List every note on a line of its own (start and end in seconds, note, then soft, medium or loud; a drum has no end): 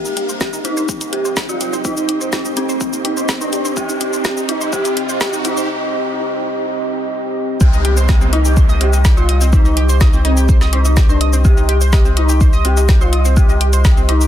0.00 7.57 C4 medium
0.00 5.69 D#4 medium
0.00 0.26 G4 medium
0.00 0.26 G4 loud
0.00 7.57 G4 medium
0.00 1.32 A#4 medium
0.00 7.57 D#5 medium
0.00 0.89 F5 medium
0.00 riser medium
0.05 0.10 D#4 medium
0.05 shaker soft
0.17 0.29 G4 medium
0.17 closed hi-hat loud
0.17 shaker soft
0.29 0.40 C5 medium
0.29 5.69 C5 medium
0.29 shaker soft
0.41 0.50 C4 loud
0.41 0.58 G4 medium
0.41 kick loud
0.41 snare loud
0.41 shaker medium
0.50 0.64 D#4 loud
0.50 5.69 G5 medium
0.50 shaker soft
0.65 0.98 D#4 loud
0.65 0.98 D#4 medium
0.65 0.77 G4 medium
0.65 closed hi-hat loud
0.65 shaker soft
0.77 0.82 C5 loud
0.77 shaker soft
0.89 0.98 C4 medium
0.89 kick loud
0.89 shaker medium
1.01 1.06 D#4 medium
1.01 closed hi-hat medium
1.01 shaker soft
1.13 1.24 G4 medium
1.13 1.38 G4 medium
1.13 1.38 G4 loud
1.13 closed hi-hat loud
1.25 1.33 C5 medium
1.25 shaker soft
1.37 1.46 C4 loud
1.37 kick loud
1.37 snare loud
1.37 shaker medium
1.49 1.60 D#4 loud
1.49 1.74 F4 loud
1.49 1.74 F4 medium
1.49 shaker soft
1.61 1.66 G4 medium
1.61 closed hi-hat loud
1.61 shaker soft
1.73 1.78 C5 loud
1.73 shaker soft
1.85 1.96 C4 medium
1.85 2.18 D#4 medium
1.85 2.18 D#4 loud
1.85 kick loud
1.85 shaker medium
1.97 2.02 D#4 medium
1.97 shaker soft
2.09 2.20 G4 medium
2.09 closed hi-hat loud
2.09 shaker soft
2.21 2.32 C5 medium
2.21 shaker soft
2.33 2.42 C4 loud
2.33 2.50 D#4 medium
2.33 kick loud
2.33 snare loud
2.33 shaker medium
2.45 2.56 D#4 loud
2.45 shaker soft
2.57 2.90 C4 medium
2.57 2.68 G4 medium
2.57 closed hi-hat loud
2.57 shaker soft
2.69 2.74 C5 loud
2.69 shaker soft
2.81 2.90 C4 medium
2.81 kick loud
2.81 shaker medium
2.93 2.98 D#4 medium
2.93 shaker soft
3.05 3.30 D#4 medium
3.05 3.17 G4 medium
3.05 closed hi-hat loud
3.17 3.25 C5 medium
3.17 shaker soft
3.29 3.38 C4 loud
3.29 kick loud
3.29 snare loud
3.29 shaker medium
3.41 3.66 D4 loud
3.41 3.52 D#4 loud
3.41 shaker soft
3.53 3.58 G4 medium
3.53 closed hi-hat loud
3.53 shaker soft
3.65 3.70 C5 loud
3.65 shaker soft
3.77 3.89 C4 medium
3.77 4.10 G4 medium
3.77 kick loud
3.77 shaker medium
3.89 3.94 D#4 medium
3.89 shaker soft
4.01 4.13 G4 medium
4.01 closed hi-hat loud
4.01 shaker soft
4.13 4.24 C5 medium
4.13 shaker soft
4.25 4.34 C4 loud
4.25 4.42 G4 medium
4.25 kick loud
4.25 snare loud
4.25 shaker medium
4.37 4.48 D#4 loud
4.37 shaker soft
4.49 4.71 D#4 medium
4.49 4.61 G4 medium
4.49 closed hi-hat loud
4.49 shaker soft
4.61 4.66 C5 medium
4.61 shaker soft
4.73 4.85 C4 medium
4.73 5.06 G4 medium
4.73 kick loud
4.73 shaker medium
4.85 4.90 D#4 medium
4.85 closed hi-hat medium
4.85 shaker soft
4.97 5.09 G4 medium
4.97 closed hi-hat loud
5.09 5.20 C5 medium
5.09 shaker soft
5.21 5.30 C4 loud
5.21 5.38 G4 medium
5.21 kick loud
5.21 snare loud
5.21 shaker medium
5.33 5.44 D#4 loud
5.33 shaker soft
5.45 5.67 D#4 medium
5.45 5.57 G4 medium
5.45 closed hi-hat loud
5.45 shaker soft
5.57 5.62 C5 medium
5.57 shaker soft
7.61 14.27 C2 medium
7.61 7.66 C4 medium
7.61 7.94 G4 loud
7.61 14.27 G4 medium
7.61 7.94 G4 loud
7.61 7.66 C5 medium
7.61 14.27 D#5 medium
7.61 14.27 C6 medium
7.61 kick loud
7.61 downlifter medium
7.61 shaker medium
7.73 7.78 D#4 medium
7.73 7.78 D#5 medium
7.73 shaker soft
7.85 7.94 G4 medium
7.85 7.94 G5 medium
7.85 closed hi-hat loud
7.97 8.08 C5 medium
7.97 8.08 C6 medium
7.97 shaker medium
8.09 8.26 G4 medium
8.09 8.14 D#5 loud
8.09 8.14 D#6 medium
8.09 kick loud
8.09 snare loud
8.09 shaker medium
8.21 8.26 C4 medium
8.21 8.26 C5 medium
8.21 shaker soft
8.33 8.66 D#4 medium
8.33 8.45 D#4 loud
8.33 8.66 D#4 loud
8.33 8.45 D#5 medium
8.33 closed hi-hat loud
8.45 8.54 G4 medium
8.45 8.53 G5 medium
8.45 shaker medium
8.57 8.62 C5 medium
8.57 8.62 C6 medium
8.57 kick loud
8.57 shaker medium
8.69 8.80 D#5 loud
8.69 8.80 D#6 medium
8.69 shaker soft
8.81 8.90 C4 medium
8.81 9.06 G4 medium
8.81 9.06 G4 loud
8.81 8.90 C5 medium
8.81 closed hi-hat loud
8.93 9.04 D#4 medium
8.93 9.04 D#5 medium
8.93 shaker medium
9.05 9.10 G4 loud
9.05 9.10 G5 medium
9.05 kick loud
9.05 snare loud
9.05 shaker medium
9.17 9.42 F4 medium
9.17 9.42 F4 loud
9.17 9.25 C5 medium
9.17 9.25 C6 medium
9.17 shaker soft
9.29 9.41 D#5 medium
9.29 9.41 D#6 medium
9.29 closed hi-hat loud
9.41 9.50 C4 medium
9.41 9.50 C5 medium
9.41 shaker medium
9.53 9.58 C4 medium
9.53 9.86 D#4 loud
9.53 9.58 C5 medium
9.53 kick loud
9.53 shaker medium
9.65 9.70 D#4 medium
9.65 9.70 D#5 medium
9.65 shaker soft
9.77 9.86 G4 medium
9.77 9.86 G5 medium
9.77 closed hi-hat loud
9.89 10.00 C5 medium
9.89 10.00 C6 medium
9.89 shaker medium
10.01 10.18 D#4 medium
10.01 10.06 D#5 loud
10.01 10.06 D#6 medium
10.01 kick loud
10.01 snare loud
10.01 shaker medium
10.13 10.18 C4 medium
10.13 10.18 C5 medium
10.13 shaker soft
10.25 10.58 C4 medium
10.25 10.58 C4 loud
10.25 10.37 D#4 loud
10.25 10.37 D#5 medium
10.25 closed hi-hat loud
10.37 10.45 G4 medium
10.37 10.45 G5 medium
10.37 shaker medium
10.49 10.54 C5 medium
10.49 10.54 C6 medium
10.49 kick loud
10.49 shaker medium
10.61 10.72 D#5 loud
10.61 10.72 D#6 medium
10.61 snare soft
10.61 shaker soft
10.73 10.82 C4 medium
10.73 10.98 D#4 medium
10.73 10.98 D#4 loud
10.73 10.82 C5 medium
10.73 closed hi-hat loud
10.85 10.96 D#4 medium
10.85 10.96 D#5 medium
10.85 shaker medium
10.97 11.02 G4 loud
10.97 11.02 G5 medium
10.97 kick loud
10.97 snare loud
10.97 shaker medium
11.09 11.34 D4 loud
11.09 11.17 C5 medium
11.09 11.17 C6 medium
11.09 shaker soft
11.21 11.33 D#5 medium
11.21 11.33 D#6 medium
11.21 closed hi-hat loud
11.33 11.41 C4 medium
11.33 11.41 C5 medium
11.33 shaker medium
11.45 11.50 C4 medium
11.45 11.78 G4 loud
11.45 11.50 C5 medium
11.45 kick loud
11.45 shaker medium
11.57 11.62 D#4 medium
11.57 11.62 D#5 medium
11.57 shaker soft
11.69 11.78 G4 medium
11.69 11.78 G5 medium
11.69 closed hi-hat loud
11.81 11.92 C5 medium
11.81 11.92 C6 medium
11.81 shaker medium
11.93 12.10 G4 loud
11.93 12.10 G4 medium
11.93 11.98 D#5 loud
11.93 11.98 D#6 medium
11.93 kick loud
11.93 snare loud
11.93 shaker medium
12.05 12.10 C4 medium
12.05 12.10 C5 medium
12.05 shaker soft
12.17 12.50 D#4 medium
12.17 12.50 D#4 loud
12.17 12.29 D#4 loud
12.17 12.29 D#5 medium
12.17 closed hi-hat loud
12.29 12.37 G4 medium
12.29 12.37 G5 medium
12.29 shaker medium
12.41 12.46 C5 medium
12.41 12.46 C6 medium
12.41 kick loud
12.41 shaker medium
12.53 12.64 D#5 loud
12.53 12.64 D#6 medium
12.53 shaker soft
12.65 12.74 C4 medium
12.65 12.90 G4 medium
12.65 12.90 G4 loud
12.65 12.74 C5 medium
12.65 closed hi-hat loud
12.77 12.88 D#4 medium
12.77 12.88 D#5 medium
12.77 shaker medium
12.89 12.94 G4 loud
12.89 12.94 G5 medium
12.89 kick loud
12.89 snare loud
12.89 shaker medium
13.01 13.26 F4 loud
13.01 13.09 C5 medium
13.01 13.09 C6 medium
13.01 shaker soft
13.13 13.25 D#5 medium
13.13 13.25 D#6 medium
13.13 closed hi-hat loud
13.25 13.33 C4 medium
13.25 13.33 C5 medium
13.25 shaker medium
13.37 13.42 C4 medium
13.37 13.70 G4 loud
13.37 13.42 C5 medium
13.37 kick loud
13.37 shaker medium
13.49 13.54 D#4 medium
13.49 13.54 D#5 medium
13.49 shaker soft
13.61 13.70 G4 medium
13.61 13.70 G5 medium
13.61 closed hi-hat loud
13.73 13.84 C5 medium
13.73 13.84 C6 medium
13.73 closed hi-hat medium
13.73 shaker medium
13.85 14.02 G4 medium
13.85 13.90 D#5 loud
13.85 13.90 D#6 medium
13.85 kick loud
13.85 snare loud
13.85 shaker medium
13.97 14.02 C4 medium
13.97 14.02 C5 medium
13.97 shaker soft
14.09 14.27 D#4 medium
14.09 14.21 D#4 loud
14.09 14.27 D#4 medium
14.09 14.21 D#5 medium
14.09 closed hi-hat loud
14.21 14.27 G4 medium
14.21 14.27 G5 medium
14.21 shaker medium